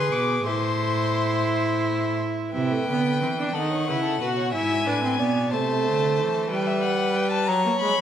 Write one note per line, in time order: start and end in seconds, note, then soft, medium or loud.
0.00 0.12 D3 medium
0.00 0.48 G#4 medium
0.00 0.46 B4 medium
0.00 0.14 C6 medium
0.12 0.47 B2 medium
0.12 0.46 D6 medium
0.47 2.16 A2 medium
0.47 2.53 E4 medium
0.47 2.16 C5 medium
0.47 2.16 C6 medium
2.53 2.85 C3 medium
2.53 2.73 E4 medium
2.53 3.55 B4 medium
2.53 3.55 G5 medium
2.71 2.88 A3 medium
2.87 3.23 D3 medium
2.87 3.21 B3 medium
3.21 3.55 E3 medium
3.21 3.28 C4 medium
3.39 3.55 D4 medium
3.53 3.90 D#3 medium
3.53 3.88 D#4 medium
3.53 3.71 A4 medium
3.53 4.53 F#5 medium
3.71 3.89 C#5 medium
3.88 4.21 C#3 medium
3.88 4.20 E4 medium
3.88 4.04 B4 medium
4.04 4.21 A4 medium
4.21 4.55 B2 medium
4.21 4.53 F#4 medium
4.21 4.28 B4 medium
4.37 4.52 C#5 medium
4.53 4.89 G#2 medium
4.53 4.86 E4 medium
4.53 4.88 E5 medium
4.53 5.50 G#5 medium
4.87 5.21 A2 medium
4.87 5.02 D4 medium
4.87 5.21 B4 medium
5.03 5.19 C4 medium
5.19 5.54 B2 medium
5.19 5.55 B3 medium
5.19 5.52 D5 medium
5.51 5.88 C3 medium
5.51 6.50 A3 medium
5.51 6.50 C5 medium
5.51 6.49 A5 medium
5.87 6.21 D3 medium
6.19 6.52 E3 medium
6.50 7.50 G3 medium
6.50 7.50 B4 medium
6.50 6.68 G5 medium
6.66 6.83 E5 medium
6.83 7.18 F#5 medium
7.16 7.31 G5 medium
7.32 7.48 A5 medium
7.47 7.65 F#3 medium
7.47 8.01 C#5 medium
7.47 7.79 A#5 medium
7.66 7.72 A#3 medium
7.80 7.98 G#3 medium
7.80 8.01 B5 loud